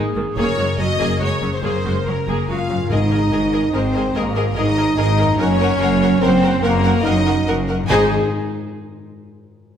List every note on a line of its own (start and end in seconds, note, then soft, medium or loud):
0.00 0.39 G#2 medium
0.00 0.39 D#3 soft
0.00 0.26 A#3 soft
0.00 0.16 G#4 medium
0.00 0.37 G#4 medium
0.00 1.00 G#5 medium
0.00 1.09 A#5 medium
0.06 0.78 A#4 soft
0.16 0.24 G#1 soft
0.16 0.24 G#2 medium
0.16 0.25 D#3 medium
0.16 0.24 A#3 soft
0.16 0.67 G#4 soft
0.27 0.57 A#3 soft
0.37 0.45 F#1 medium
0.37 0.46 F#2 medium
0.37 1.62 F#2 medium
0.37 0.56 A#3 medium
0.37 0.52 A#3 medium
0.37 0.56 G#4 medium
0.37 0.52 G#4 medium
0.37 0.81 A#4 medium
0.37 0.76 C#5 medium
0.48 1.73 C#3 soft
0.57 0.65 F#1 soft
0.57 0.66 F#2 soft
0.57 0.65 G#3 soft
0.57 1.52 A#3 soft
0.57 0.65 F#4 soft
0.69 0.89 G#4 soft
0.78 0.86 F#1 soft
0.78 0.87 F#2 soft
0.78 0.87 F#3 soft
0.78 0.88 C#4 soft
0.78 1.08 F#4 medium
0.78 1.31 A#4 soft
0.78 1.21 D#5 medium
0.91 1.42 G#4 soft
0.99 1.07 F#1 medium
0.99 1.08 F#2 medium
0.99 1.19 A#3 medium
0.99 1.19 G#4 medium
0.99 1.20 G#5 soft
1.10 2.37 A#5 soft
1.20 1.28 F#1 soft
1.20 1.29 F#2 soft
1.20 1.29 G#3 soft
1.20 1.29 F#4 soft
1.20 1.62 G#4 medium
1.20 1.52 C#5 medium
1.20 2.27 G#5 soft
1.32 2.05 A#4 soft
1.41 1.50 F#1 soft
1.41 1.51 F#2 soft
1.41 1.49 F#3 soft
1.41 1.50 C#4 soft
1.41 1.94 G#4 soft
1.53 1.83 A#3 soft
1.53 1.61 C5 soft
1.53 1.62 C5 medium
1.62 1.71 F#1 medium
1.62 2.93 F#2 soft
1.62 1.72 F#2 medium
1.62 1.78 A#3 soft
1.62 1.83 A#3 soft
1.62 1.78 G#4 soft
1.62 1.83 G#4 medium
1.62 2.67 A#4 medium
1.62 2.05 C5 medium
1.74 2.93 C#3 soft
1.85 1.93 F#1 soft
1.85 1.93 F#2 soft
1.85 1.94 G#3 soft
1.85 2.76 A#3 soft
1.85 1.93 F#4 soft
1.96 2.15 G#4 soft
2.06 2.14 F#1 soft
2.06 2.14 F#2 soft
2.06 2.15 F#3 soft
2.06 2.15 C#4 soft
2.06 2.49 A#4 medium
2.06 2.48 A#4 soft
2.06 2.59 A#4 soft
2.17 2.69 G#4 soft
2.27 2.35 F#1 medium
2.27 2.35 F#2 medium
2.27 2.48 A#3 soft
2.27 2.47 G#4 soft
2.27 2.48 G#5 soft
2.38 6.28 A#5 soft
2.49 2.57 F#1 soft
2.49 2.57 F#2 soft
2.49 2.57 G#3 soft
2.49 2.88 F4 medium
2.49 2.57 F#4 soft
2.49 2.88 F5 medium
2.49 5.42 G#5 soft
2.60 2.85 A#4 soft
2.69 2.78 F#1 soft
2.69 2.78 F#2 soft
2.69 5.33 G#2 soft
2.69 2.77 F#3 soft
2.69 2.77 C#4 soft
2.69 2.80 G#4 soft
2.77 2.80 A#3 soft
2.77 5.25 A#3 soft
2.81 5.37 G#4 soft
2.87 3.49 G#2 medium
2.87 3.28 G#2 medium
2.87 2.98 G#4 soft
2.87 5.30 A#4 soft
2.87 2.98 A#4 medium
2.91 3.28 G#1 medium
2.91 3.75 D#4 medium
2.91 2.99 A#4 medium
2.91 2.99 D#5 medium
2.91 3.74 D#5 medium
3.11 3.19 G#4 soft
3.11 3.19 A#4 soft
3.11 3.19 D#5 soft
3.31 3.70 G#1 medium
3.31 3.70 G#2 medium
3.31 3.39 G#4 soft
3.31 3.39 A#4 soft
3.31 3.40 A#4 medium
3.31 3.40 D#5 medium
3.52 3.61 G#4 soft
3.52 3.60 A#4 soft
3.52 3.61 A#4 soft
3.52 3.61 D#5 soft
3.73 4.11 G#1 medium
3.73 4.11 G#2 medium
3.73 4.15 C4 medium
3.73 3.81 G#4 medium
3.73 3.81 A#4 soft
3.73 3.81 A#4 medium
3.73 4.15 C5 medium
3.73 3.81 D#5 medium
3.94 4.03 G#4 soft
3.94 4.02 A#4 soft
3.94 4.03 A#4 soft
3.94 4.02 D#5 soft
4.15 4.53 G#1 medium
4.15 4.52 G#2 medium
4.15 4.58 A#3 medium
4.15 4.24 G#4 medium
4.15 4.23 A#4 medium
4.15 4.24 A#4 medium
4.15 4.58 A#4 medium
4.15 4.23 D#5 medium
4.35 4.44 G#4 medium
4.35 4.43 A#4 medium
4.35 4.44 A#4 medium
4.35 4.44 D#5 medium
4.55 4.94 G#1 medium
4.55 4.94 G#2 medium
4.55 4.96 D#4 medium
4.55 4.64 G#4 medium
4.55 4.63 A#4 medium
4.55 4.64 A#4 medium
4.55 4.63 D#5 medium
4.55 4.97 D#5 medium
4.76 4.85 G#4 medium
4.76 4.84 A#4 medium
4.76 4.86 A#4 medium
4.76 4.84 D#5 medium
4.97 5.35 G#1 medium
4.97 5.34 G#2 medium
4.97 5.38 D#4 loud
4.97 5.05 G#4 medium
4.97 5.05 A#4 medium
4.97 5.05 D#5 medium
4.97 5.39 D#5 medium
5.17 5.25 G#4 medium
5.17 5.26 A#4 medium
5.17 5.27 A#4 medium
5.17 5.27 D#5 medium
5.22 7.82 F#2 medium
5.27 7.85 A#3 medium
5.31 7.87 A#4 medium
5.38 5.76 F#1 medium
5.38 5.76 F#2 medium
5.38 6.20 C#4 loud
5.38 5.47 A#4 medium
5.38 6.20 C#5 medium
5.38 5.47 F#5 medium
5.59 5.68 A#4 medium
5.59 5.69 A#4 medium
5.59 5.69 F#5 medium
5.80 6.17 F#1 medium
5.80 6.17 F#2 medium
5.80 5.88 A#4 medium
5.80 5.90 A#4 medium
5.80 5.90 F#5 medium
6.01 6.09 A#4 medium
6.01 6.10 A#4 medium
6.01 6.11 F#5 medium
6.21 6.58 F#1 medium
6.21 6.58 F#2 medium
6.21 6.62 C4 loud
6.21 6.29 A#4 medium
6.21 6.31 A#4 medium
6.21 6.63 C5 medium
6.21 6.31 F#5 medium
6.42 6.50 A#4 medium
6.42 6.52 A#4 medium
6.42 6.51 F#5 medium
6.63 7.00 F#1 medium
6.63 7.00 F#2 medium
6.63 7.04 A#3 loud
6.63 6.71 A#4 medium
6.63 7.04 A#4 medium
6.63 6.72 A#4 medium
6.63 6.72 F#5 medium
6.84 6.92 A#4 medium
6.84 6.92 F#5 medium
7.03 7.42 F#1 medium
7.03 7.42 F#2 medium
7.03 7.45 D#4 medium
7.03 7.13 A#4 medium
7.03 7.47 D#5 medium
7.03 7.13 F#5 medium
7.26 7.34 A#4 medium
7.26 7.34 F#5 medium
7.46 7.85 F#1 medium
7.46 7.85 F#2 medium
7.46 7.55 A#4 medium
7.46 7.56 A#4 medium
7.46 7.54 F#5 medium
7.68 7.76 A#4 medium
7.68 7.78 A#4 medium
7.68 7.76 F#5 medium
7.83 8.13 G#2 medium
7.83 8.13 G#3 medium
7.89 8.13 G#1 medium
7.89 8.12 G#2 medium
7.89 8.09 G#2 loud
7.89 8.13 D#4 medium
7.89 8.13 G#4 medium
7.89 8.08 G#4 loud
7.89 8.13 G#4 medium
7.89 8.12 C5 medium
7.89 8.12 D#5 medium
7.89 8.13 G#5 medium